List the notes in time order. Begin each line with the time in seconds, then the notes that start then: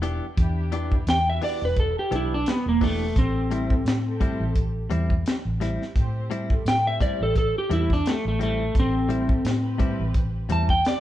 Already playing: E1
0.02 E3 B3 D4 G4, closed hi-hat
0.37 E2 D4 E4 G4, kick, closed hi-hat
0.72 E3 B3 D4 G4, closed hi-hat
0.91 D4 E4 G4, kick
1.07 E2 G5, snare, closed hi-hat
1.26 D4 E4 F#4 E5
1.41 E3 B3 D4 G4 D5, open hi-hat
1.62 E1 B4
1.76 A4, kick, closed hi-hat
1.99 G4
2.11 B1 E3 B3 D4 G4, closed hi-hat
2.16 E4
2.34 D4
2.46 snare, closed hi-hat
2.50 B3
2.66 E1 A#3
2.81 E3 A3 B3 D4 G4, kick, snare, open hi-hat
3.15 A1 C4 G4 A4, kick, closed hi-hat
3.51 A2 G3 C4 E4, closed hi-hat
3.70 C4 G4 A4, kick
3.85 A2, snare, closed hi-hat
4.05 C4 G4 A4
4.20 A2 G3 C4 E4, kick, closed hi-hat
4.40 A1
4.56 kick, closed hi-hat
4.90 E2 A2 G3 C4 E4, closed hi-hat
5.10 kick
5.26 snare, closed hi-hat
5.45 A1
5.60 A2 G3 C4 E4, snare, closed hi-hat
5.82 snare
5.96 A2 C4 G4 C5, kick, closed hi-hat
6.30 A2 G3 C4 E4, closed hi-hat
6.49 C4 G4 A4, kick
6.65 A2 G5, snare, closed hi-hat
6.83 C4 G4 C5 E5
7.00 A2 G3 C4 E4 D5, kick, closed hi-hat
7.20 A1 A4
7.36 A4, kick, closed hi-hat
7.58 G4
7.70 E2 A2 G3 C4 E4, closed hi-hat
7.90 D4, kick, snare
8.06 A3, snare, closed hi-hat
8.25 A1 A3
8.39 A2 G3 A3 C4 E4, closed hi-hat
8.74 A1 C4 G4 A4, kick, closed hi-hat
8.80 C4
9.09 A2 G3 C4 E4, closed hi-hat
9.28 C4 G4 A4, kick
9.45 A2, snare, closed hi-hat
9.63 C4 G4 B4
9.78 A2 G3 C4 E4, kick, closed hi-hat
10.00 A1
10.14 kick, closed hi-hat
10.49 E2 A2 G3 C4 E4 A5, closed hi-hat
10.69 G5, kick
10.85 D5, snare, closed hi-hat